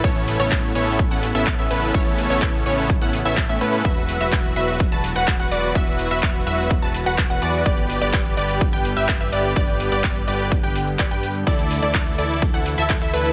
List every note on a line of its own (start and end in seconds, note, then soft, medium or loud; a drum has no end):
0.00 3.81 C#3 medium
0.00 3.81 A3 medium
0.00 0.37 B3 loud
0.00 3.81 B3 medium
0.00 0.37 C#4 medium
0.00 0.37 E4 medium
0.00 3.81 E4 loud
0.00 0.37 A4 medium
0.00 0.37 C#5 loud
0.00 kick loud
0.04 closed hi-hat medium
0.16 closed hi-hat soft
0.28 open hi-hat loud
0.40 0.73 A1 medium
0.40 0.72 B3 medium
0.40 0.72 C#4 medium
0.40 0.72 E4 medium
0.40 0.72 A4 medium
0.40 0.72 C#5 loud
0.40 0.72 C#5 medium
0.40 closed hi-hat soft
0.52 kick loud
0.52 clap loud
0.52 closed hi-hat medium
0.63 closed hi-hat soft
0.75 1.09 A1 loud
0.75 0.99 B3 medium
0.75 0.99 C#4 medium
0.75 0.99 E4 medium
0.75 0.99 A4 medium
0.75 0.99 C#5 loud
0.75 open hi-hat loud
0.87 closed hi-hat soft
0.99 kick loud
0.99 closed hi-hat medium
1.11 1.33 A1 loud
1.11 1.26 B3 medium
1.11 1.26 C#4 medium
1.11 1.26 E4 medium
1.11 1.26 A4 medium
1.11 1.26 F#5 medium
1.11 closed hi-hat soft
1.23 open hi-hat loud
1.35 1.56 A1 loud
1.35 1.50 B3 loud
1.35 1.50 C#4 medium
1.35 1.50 E4 medium
1.35 1.50 A4 medium
1.35 1.50 E5 loud
1.35 closed hi-hat soft
1.47 kick loud
1.47 clap loud
1.47 closed hi-hat medium
1.59 1.68 A1 loud
1.59 1.69 B3 medium
1.59 1.69 C#4 medium
1.59 1.69 E4 medium
1.59 1.69 A4 medium
1.59 1.69 E5 medium
1.59 1.69 E5 loud
1.59 closed hi-hat soft
1.70 1.92 A1 loud
1.70 1.91 B3 loud
1.70 1.91 C#4 medium
1.70 1.91 E4 medium
1.70 1.91 A4 medium
1.70 1.91 B4 loud
1.70 open hi-hat loud
1.83 closed hi-hat soft
1.94 2.27 B3 loud
1.94 2.27 C#4 medium
1.94 2.27 E4 medium
1.94 2.27 A4 medium
1.94 2.27 C#5 loud
1.94 kick loud
1.94 closed hi-hat medium
2.06 closed hi-hat soft
2.18 open hi-hat loud
2.30 2.63 A1 loud
2.30 2.63 B3 medium
2.30 2.63 C#4 medium
2.30 2.63 E4 medium
2.30 2.63 A4 medium
2.30 2.63 C#5 medium
2.30 closed hi-hat soft
2.42 kick loud
2.42 clap loud
2.42 closed hi-hat medium
2.54 closed hi-hat soft
2.66 2.99 A1 loud
2.66 2.90 B3 medium
2.66 2.90 C#4 medium
2.66 2.90 E4 medium
2.66 2.90 A4 medium
2.66 2.90 C#5 loud
2.66 open hi-hat medium
2.78 closed hi-hat soft
2.90 kick loud
2.90 closed hi-hat medium
3.01 3.23 A1 loud
3.01 3.16 B3 medium
3.01 3.16 C#4 medium
3.01 3.16 E4 medium
3.01 3.16 A4 medium
3.01 3.16 F#5 medium
3.01 closed hi-hat soft
3.13 open hi-hat loud
3.25 3.47 A1 loud
3.25 3.40 B3 loud
3.25 3.40 C#4 medium
3.25 3.40 E4 medium
3.25 3.40 A4 medium
3.25 3.40 E5 loud
3.25 closed hi-hat soft
3.37 kick loud
3.37 clap loud
3.37 closed hi-hat medium
3.49 3.59 A2 loud
3.49 3.59 B3 medium
3.49 3.59 C#4 medium
3.49 3.59 E4 medium
3.49 3.59 A4 medium
3.49 3.59 E5 loud
3.49 closed hi-hat soft
3.61 3.83 A2 loud
3.61 3.82 B3 medium
3.61 3.82 C#4 medium
3.61 3.82 E4 medium
3.61 3.82 A4 medium
3.61 3.82 B4 loud
3.61 open hi-hat loud
3.73 closed hi-hat soft
3.85 4.18 E1 loud
3.85 7.62 E3 medium
3.85 7.62 F#3 medium
3.85 11.43 B3 medium
3.85 7.62 F#4 loud
3.85 4.18 B4 medium
3.85 4.18 E5 loud
3.85 kick loud
3.85 closed hi-hat medium
3.97 closed hi-hat soft
4.09 open hi-hat loud
4.21 4.54 E1 medium
4.21 4.53 F#4 medium
4.21 4.53 B4 medium
4.21 4.53 E5 loud
4.21 4.53 E5 medium
4.21 closed hi-hat soft
4.32 kick loud
4.32 clap loud
4.32 closed hi-hat medium
4.44 closed hi-hat soft
4.56 4.90 E1 loud
4.56 4.80 F#4 medium
4.56 4.80 B4 medium
4.56 4.80 E5 loud
4.56 open hi-hat medium
4.68 closed hi-hat soft
4.80 kick loud
4.80 closed hi-hat medium
4.92 5.13 E1 loud
4.92 5.07 F#4 medium
4.92 5.07 B4 medium
4.92 5.07 A5 medium
4.92 closed hi-hat soft
5.04 open hi-hat loud
5.16 5.37 E1 loud
5.16 5.31 F#4 loud
5.16 5.31 B4 medium
5.16 5.31 F#5 loud
5.16 closed hi-hat soft
5.28 kick loud
5.28 clap loud
5.28 closed hi-hat medium
5.40 5.49 E1 loud
5.40 5.50 F#4 medium
5.40 5.50 B4 medium
5.40 5.50 F#5 loud
5.40 closed hi-hat soft
5.51 5.73 E1 loud
5.51 5.72 F#4 medium
5.51 5.72 B4 medium
5.51 5.72 D5 loud
5.51 open hi-hat medium
5.63 closed hi-hat soft
5.75 6.08 F#4 medium
5.75 6.08 E5 loud
5.75 kick loud
5.75 closed hi-hat medium
5.87 closed hi-hat soft
5.99 open hi-hat loud
6.11 6.44 E1 medium
6.11 6.44 F#4 medium
6.11 6.44 B4 medium
6.11 6.44 E5 medium
6.11 closed hi-hat soft
6.23 kick loud
6.23 clap loud
6.23 closed hi-hat medium
6.35 closed hi-hat soft
6.47 6.80 E1 loud
6.47 6.71 F#4 medium
6.47 6.71 B4 medium
6.47 6.71 E5 loud
6.47 open hi-hat medium
6.59 closed hi-hat soft
6.71 kick loud
6.71 closed hi-hat loud
6.82 7.04 E1 loud
6.82 6.97 F#4 medium
6.82 6.97 B4 medium
6.82 6.97 A5 loud
6.82 closed hi-hat soft
6.94 open hi-hat loud
7.06 7.28 E1 loud
7.06 7.21 F#4 loud
7.06 7.21 B4 medium
7.06 7.21 F#5 loud
7.06 closed hi-hat soft
7.18 kick loud
7.18 clap loud
7.18 closed hi-hat medium
7.30 7.40 E1 loud
7.30 7.40 F#4 medium
7.30 7.40 B4 medium
7.30 7.40 F#5 loud
7.30 closed hi-hat soft
7.42 7.63 E2 loud
7.42 7.63 F#4 medium
7.42 7.63 B4 medium
7.42 7.63 D5 loud
7.42 open hi-hat medium
7.54 closed hi-hat soft
7.66 7.99 G1 loud
7.66 13.33 D3 medium
7.66 11.43 G3 medium
7.66 11.43 G4 loud
7.66 7.99 G4 medium
7.66 7.99 B4 medium
7.66 7.99 D5 loud
7.66 kick loud
7.66 closed hi-hat medium
7.78 closed hi-hat soft
7.90 open hi-hat loud
8.01 8.35 G1 medium
8.01 8.34 G4 medium
8.01 8.34 B4 medium
8.01 8.34 D5 medium
8.01 8.34 D5 loud
8.01 closed hi-hat soft
8.13 kick loud
8.13 clap loud
8.13 closed hi-hat medium
8.25 closed hi-hat soft
8.37 8.71 G1 loud
8.37 8.61 G4 medium
8.37 8.61 B4 medium
8.37 8.61 D5 loud
8.37 open hi-hat medium
8.49 closed hi-hat soft
8.61 kick loud
8.61 closed hi-hat loud
8.73 8.94 G1 loud
8.73 8.88 G4 medium
8.73 8.88 B4 medium
8.73 8.88 G5 medium
8.73 closed hi-hat soft
8.85 open hi-hat loud
8.97 9.18 G1 loud
8.97 9.12 G4 loud
8.97 9.12 B4 medium
8.97 9.12 E5 loud
8.97 closed hi-hat soft
9.09 kick loud
9.09 clap loud
9.09 closed hi-hat loud
9.20 9.30 G1 loud
9.20 9.31 G4 medium
9.20 9.31 B4 medium
9.20 9.31 E5 loud
9.20 closed hi-hat soft
9.32 9.54 G1 loud
9.32 9.53 G4 loud
9.32 9.53 B4 medium
9.32 9.53 D5 loud
9.32 open hi-hat medium
9.44 closed hi-hat soft
9.56 9.89 G4 loud
9.56 9.89 B4 medium
9.56 9.89 D5 loud
9.56 kick loud
9.56 closed hi-hat medium
9.68 closed hi-hat soft
9.80 open hi-hat loud
9.92 10.25 G1 medium
9.92 10.25 G4 medium
9.92 10.25 B4 medium
9.92 10.25 D5 medium
9.92 closed hi-hat soft
10.04 kick loud
10.04 clap loud
10.04 closed hi-hat loud
10.16 closed hi-hat soft
10.28 10.61 G1 loud
10.28 10.52 G4 medium
10.28 10.52 B4 medium
10.28 10.52 D5 loud
10.28 open hi-hat medium
10.40 closed hi-hat soft
10.52 kick loud
10.52 closed hi-hat loud
10.63 10.97 G1 loud
10.63 10.78 G4 medium
10.63 10.78 B4 medium
10.63 10.78 G5 medium
10.63 closed hi-hat soft
10.76 open hi-hat loud
10.87 closed hi-hat soft
10.99 11.09 G4 medium
10.99 11.09 B4 medium
10.99 11.09 D5 loud
10.99 11.09 D5 medium
10.99 kick loud
10.99 clap loud
10.99 closed hi-hat loud
11.11 11.44 G2 loud
11.11 11.26 G4 medium
11.11 11.26 B4 medium
11.11 11.26 G5 loud
11.11 11.26 G5 medium
11.11 closed hi-hat soft
11.23 open hi-hat medium
11.35 closed hi-hat soft
11.47 11.80 D2 loud
11.47 13.33 E3 medium
11.47 13.33 A3 medium
11.47 11.80 E4 loud
11.47 13.33 E4 loud
11.47 11.80 A4 medium
11.47 11.80 D5 loud
11.47 kick loud
11.47 closed hi-hat loud
11.47 crash medium
11.47 ride medium
11.59 closed hi-hat soft
11.71 open hi-hat loud
11.82 12.16 D2 medium
11.82 12.15 E4 medium
11.82 12.15 A4 medium
11.82 12.15 D5 medium
11.82 closed hi-hat soft
11.94 kick loud
11.94 clap loud
11.94 closed hi-hat loud
11.94 ride medium
12.06 closed hi-hat soft
12.18 12.52 D2 loud
12.18 12.42 E4 medium
12.18 12.42 A4 medium
12.18 12.42 D5 loud
12.18 open hi-hat medium
12.30 closed hi-hat soft
12.42 kick loud
12.42 closed hi-hat loud
12.42 ride medium
12.54 12.75 D2 medium
12.54 12.69 E4 medium
12.54 12.69 A4 medium
12.54 12.69 F#5 medium
12.54 closed hi-hat soft
12.66 open hi-hat loud
12.78 12.99 D2 loud
12.78 12.93 E4 loud
12.78 12.93 A4 loud
12.78 12.93 E5 loud
12.78 closed hi-hat soft
12.90 kick loud
12.90 clap loud
12.90 closed hi-hat loud
12.90 ride medium
13.01 13.11 D2 loud
13.01 13.12 E4 medium
13.01 13.12 A4 medium
13.01 13.12 E5 loud
13.01 closed hi-hat soft
13.13 13.33 D2 loud
13.13 13.33 E4 medium
13.13 13.33 A4 medium
13.13 13.33 B4 loud
13.13 open hi-hat loud
13.25 closed hi-hat soft